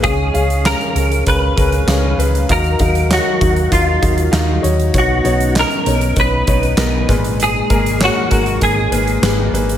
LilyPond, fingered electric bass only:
\new Staff \with { instrumentName = "Fingered electric bass" } { \clef bass \time 4/4 \key gis \dorian \tempo 4 = 98 cis,8 cis,8. r16 cis,8 cis,8 cis,8 cis,8 cis,8 | dis,8 dis,8. r16 dis,8 dis,8 dis,8 dis,8 dis,8 | b,,8 b,,8. r16 b,,8 b,,8 b,,8 b,,8 gis,,8~ | gis,,8 gis,,8. r16 gis,,8 gis,,8 gis,,8 gis,,8 gis,,8 | }